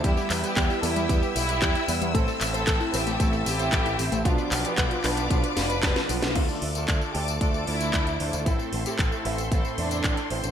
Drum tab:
CC |----------------|----------------|----------------|x---------------|
HH |x-oxx-oxx-oxxxox|x-oxx-oxx-oxxxox|x-oxxxoxxxoxxxox|x-oxx-oxx-oxxxox|
TB |xxxxxxxxxxxxxxxx|xxxxxxxxxxxxxxxx|xxxxxxxxxxxxxxxx|xx-xxx-xxx-xxx-x|
CP |--x-x-------x---|--x-x-------x---|--x-x-x-----x---|----x-------x---|
SD |----------------|----------------|----------o-oo-o|----------------|
BD |o---o---o---o---|o---o---o---o---|o---o---o---o---|o---o---o---o---|

CC |----------------|
HH |x-oxx-oxx-oxxxox|
TB |xx-xxx-xxx-xxx-x|
CP |----x-------x---|
SD |----------------|
BD |o---o---o---o---|